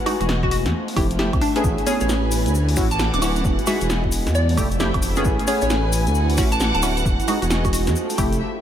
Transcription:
Already playing: E3 F#4 F#5
0.01 G#4
0.06 G#3 D#4 F#4, open hi-hat, high woodblock
0.20 E1 F#4, closed hi-hat
0.26 D#5, snare
0.43 F#4, kick
0.51 F#4, open hi-hat
0.66 E2, snare, closed hi-hat
0.74 F3 E4
0.88 open hi-hat
0.94 F1 A3 E4 G4 G5, kick, open hi-hat, high woodblock
1.11 closed hi-hat
1.15 A3 E4 G4 E5, snare
1.33 C2, kick, closed hi-hat, high woodblock
1.41 D4, open hi-hat
1.56 B3 C#4 D4 G#4, closed hi-hat
1.64 A1 C#4, kick, cabasa
1.78 closed hi-hat
1.87 B3 C#4 G#4 C#5, open hi-hat, cabasa
1.97 A1 B4 G#5, closed hi-hat, cabasa
2.01 C#5
2.09 snare, cabasa
2.31 E3 F#4, open hi-hat, cabasa
2.46 D2, closed hi-hat, cabasa
2.55 cabasa
2.69 D6, open hi-hat
2.76 A1 C#4 E4 F#4, finger snap, kick, open hi-hat, cabasa
2.84 F#5
2.91 A5, closed hi-hat, cabasa
2.99 snare, cabasa
3.14 D1 D6, closed hi-hat
3.22 C#4 E4 F#4 D6, open hi-hat, cabasa, high woodblock
3.36 closed hi-hat, cabasa
3.45 E1, kick, cabasa
3.54 G#4
3.59 closed hi-hat
3.67 G#3 D#4 F#4 E5, open hi-hat, cabasa, high woodblock
3.81 E1 D#5, closed hi-hat, cabasa
3.90 snare, cabasa
4.04 kick
4.12 open hi-hat, cabasa
4.27 E2, snare, closed hi-hat, cabasa
4.35 F3 E4 D5, cabasa
4.49 open hi-hat
4.57 F1 A3 E4 G4 E5, kick, open hi-hat, cabasa, high woodblock
4.62 A3
4.71 closed hi-hat, cabasa
4.77 A3 E4 G4 G5, snare, cabasa
4.94 F1, kick, closed hi-hat, high woodblock
5.02 open hi-hat, cabasa
5.16 B3 C#4 G#4, closed hi-hat, cabasa
5.25 A1 C#4, kick, cabasa
5.39 B4, closed hi-hat
5.47 B3 C#4 G#4 C#5 G#5, open hi-hat, cabasa
5.61 A1 C#5, closed hi-hat, cabasa
5.70 snare, cabasa
5.93 E3 F#4, open hi-hat, cabasa
6.07 D2, closed hi-hat, cabasa
6.13 F#5, cabasa
6.30 open hi-hat
6.35 A1 C#4 E4 F#4 D6, finger snap, kick, open hi-hat, cabasa
6.52 A5, closed hi-hat, cabasa
6.60 snare, cabasa
6.75 D1 A5, closed hi-hat
6.83 C#4 E4 F#4, open hi-hat, cabasa, high woodblock
6.97 closed hi-hat, cabasa
7.05 E1, kick, cabasa
7.20 closed hi-hat, cabasa
7.25 G#3 D#4 F#4 G#4, open hi-hat, cabasa, high woodblock
7.42 E1 F#4, closed hi-hat, cabasa
7.47 D#5, snare, cabasa
7.65 F#4, kick, closed hi-hat, cabasa
7.73 F#4, open hi-hat, cabasa
7.87 E2, snare, closed hi-hat, cabasa
7.96 F3, cabasa
8.05 A4
8.10 G5, open hi-hat, cabasa
8.18 F1 A3 E4 G4, kick, open hi-hat, cabasa, high woodblock
8.33 closed hi-hat, cabasa
8.38 E5

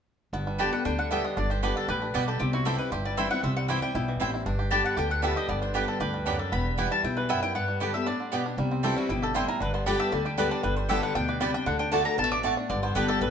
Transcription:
0.33 G1 G2 B3
0.47 G3
0.59 D3 G3 B3 G4 D5 G5 A5
0.72 G3 B3 G4 F#5
0.85 D2 D3 D4 G5
0.99 D3 F#5
1.10 D3 G3 B3 G4 D5 E5 G5
1.24 D4 D#5
1.37 G1 G2 D4 D5
1.50 G4 C5
1.63 D3 G3 B3 D4 G4 B4 D5 G5
1.76 B3 A4
1.88 A1 A2 G4 B4
2.02 D4
2.14 B1 B2 G3 B3 G4 D5 G5
2.28 G4 A4
2.39 C2 C3 C4 G4
2.53 E4 F#4
2.65 E3 G3 C4 E4 G4 A4 C5 G5
2.78 E4 B4
2.92 G1 G2 G4 C5
3.05 G3 D5
3.17 E3 G3 C4 E4 C5 E5 G5
3.31 G3 C4 E4 F#5
3.43 C2 C3 C4 E5
3.56 G3 F#5
3.68 E3 G3 C4 E4 G4 C5 G5
3.82 G3 C4 E4 G5
3.94 B1 B2 E4
4.08 E3
4.20 A1 A2 C4 E4 C5 G5
4.34 E4
4.46 G1 G2 D4
4.59 G4
4.71 D3 G3 B3 D4 G4 D5 G5 A5
4.84 B3 F#5
4.97 D2 D3 G4 G5
5.10 D4 F#5
5.22 D3 G3 B3 G4 D5 E5 G5
5.36 G4 D#5
5.48 G1 G2 B3 D5
5.62 D4 C5
5.74 D3 G3 B3 G4 B4 D5 G5
5.88 D4 A4
6.00 D2 G2 G4 B4
6.14 G3
6.26 F#2 B3 D4 G4 D5 G5
6.39 G3 A4
6.52 E1 E2 B3 B5
6.78 E3 G3 B3 E4 G4 B4 G5
6.91 G3 A5
7.04 B1 E2 E4 G5
7.17 E3 B4
7.29 F#2 B3 E4 B4 E5 G5
7.43 E4 G5
7.55 G2 B3 F#5
7.68 G3
7.80 D3 G3 B3 G4 D5 G5
7.94 G3 B3 G4 E5
8.06 A2 D4 D5
8.20 D3
8.32 B2 B3 G4 D5 G5
8.46 D4
8.57 C2 C3 G3
8.71 C4
8.83 E3 G3 C4 E4 G4 A4 C5 G5
8.97 G3 F#4
9.09 G1 B2 E4 G4
9.22 G4 A4
9.34 A2 G3 C4 E4 C5 G5
9.48 E4 A#4
9.60 G1 G2 D3 B4
9.74 B3 C5
9.86 D3 G3 B3 D4 G4 D5 G5
10.00 G4 E5
10.12 D2 D3 G3 D5
10.25 G4
10.37 D3 G3 B3 G4 B4 D5 G5
10.51 D4 D5
10.63 G1 G2 G3 B4
10.77 C5
10.89 D3 G3 B3 G4 D5 E5 G5
11.03 G3 F#5
11.15 D2 B2 D4 G5
11.28 G4 B4
11.40 C3 G3 B3 G4 D5 G5
11.54 D4 G5
11.66 D2 D3 F#5
11.79 D4 G5
11.92 D3 A3 D4 F#4 D5 A5
12.05 D4 A#5
12.18 A1 B2 G3 A5
12.24 A3
12.32 D4 D6
12.43 A2 A3 F#4 D5 A5
12.57 D4
12.70 G1 G2 D3 D5
12.83 B3 C5
12.95 G1 D3 G3 B3 D4 G4 B4 D5 G5
13.08 G4 A4
13.21 A1 A2 G3 B4

